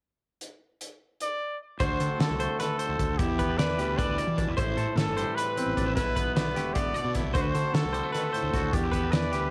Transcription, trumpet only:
0, 0, Header, 1, 2, 480
1, 0, Start_track
1, 0, Tempo, 396040
1, 491, Time_signature, 7, 3, 24, 8
1, 11520, End_track
2, 0, Start_track
2, 0, Title_t, "Trumpet"
2, 0, Program_c, 0, 56
2, 1475, Note_on_c, 0, 74, 86
2, 1913, Note_off_c, 0, 74, 0
2, 2191, Note_on_c, 0, 72, 98
2, 2632, Note_off_c, 0, 72, 0
2, 2675, Note_on_c, 0, 69, 87
2, 3115, Note_off_c, 0, 69, 0
2, 3161, Note_on_c, 0, 69, 81
2, 3853, Note_on_c, 0, 67, 82
2, 3871, Note_off_c, 0, 69, 0
2, 4334, Note_on_c, 0, 71, 85
2, 4352, Note_off_c, 0, 67, 0
2, 4820, Note_on_c, 0, 74, 89
2, 4838, Note_off_c, 0, 71, 0
2, 5303, Note_off_c, 0, 74, 0
2, 5552, Note_on_c, 0, 72, 92
2, 6019, Note_on_c, 0, 69, 86
2, 6037, Note_off_c, 0, 72, 0
2, 6483, Note_on_c, 0, 71, 85
2, 6502, Note_off_c, 0, 69, 0
2, 7213, Note_off_c, 0, 71, 0
2, 7220, Note_on_c, 0, 71, 87
2, 7667, Note_off_c, 0, 71, 0
2, 7689, Note_on_c, 0, 71, 83
2, 8168, Note_on_c, 0, 74, 89
2, 8186, Note_off_c, 0, 71, 0
2, 8654, Note_off_c, 0, 74, 0
2, 8922, Note_on_c, 0, 72, 88
2, 8990, Note_on_c, 0, 71, 66
2, 9008, Note_off_c, 0, 72, 0
2, 9082, Note_on_c, 0, 72, 86
2, 9100, Note_off_c, 0, 71, 0
2, 9389, Note_on_c, 0, 69, 80
2, 9408, Note_off_c, 0, 72, 0
2, 9843, Note_off_c, 0, 69, 0
2, 9851, Note_on_c, 0, 69, 81
2, 10588, Note_on_c, 0, 67, 79
2, 10606, Note_off_c, 0, 69, 0
2, 11044, Note_on_c, 0, 71, 78
2, 11062, Note_off_c, 0, 67, 0
2, 11520, Note_off_c, 0, 71, 0
2, 11520, End_track
0, 0, End_of_file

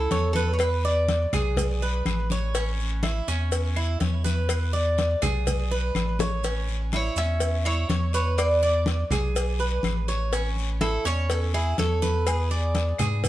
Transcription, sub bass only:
0, 0, Header, 1, 2, 480
1, 0, Start_track
1, 0, Key_signature, 3, "major"
1, 0, Tempo, 486224
1, 592, Time_signature, 4, 2, 24, 8
1, 13117, End_track
2, 0, Start_track
2, 0, Title_t, "Sub bass"
2, 0, Program_c, 0, 38
2, 113, Note_on_c, 0, 40, 100
2, 1250, Note_off_c, 0, 40, 0
2, 1317, Note_on_c, 0, 35, 102
2, 1996, Note_off_c, 0, 35, 0
2, 2035, Note_on_c, 0, 33, 104
2, 3172, Note_off_c, 0, 33, 0
2, 3237, Note_on_c, 0, 40, 92
2, 3917, Note_off_c, 0, 40, 0
2, 3956, Note_on_c, 0, 40, 97
2, 5092, Note_off_c, 0, 40, 0
2, 5155, Note_on_c, 0, 35, 98
2, 5836, Note_off_c, 0, 35, 0
2, 5871, Note_on_c, 0, 33, 98
2, 7010, Note_off_c, 0, 33, 0
2, 7066, Note_on_c, 0, 40, 91
2, 7751, Note_off_c, 0, 40, 0
2, 7788, Note_on_c, 0, 40, 100
2, 8927, Note_off_c, 0, 40, 0
2, 8982, Note_on_c, 0, 35, 100
2, 9667, Note_off_c, 0, 35, 0
2, 9703, Note_on_c, 0, 33, 101
2, 10843, Note_off_c, 0, 33, 0
2, 10911, Note_on_c, 0, 40, 92
2, 11590, Note_off_c, 0, 40, 0
2, 11638, Note_on_c, 0, 40, 98
2, 12768, Note_off_c, 0, 40, 0
2, 12823, Note_on_c, 0, 44, 98
2, 13117, Note_off_c, 0, 44, 0
2, 13117, End_track
0, 0, End_of_file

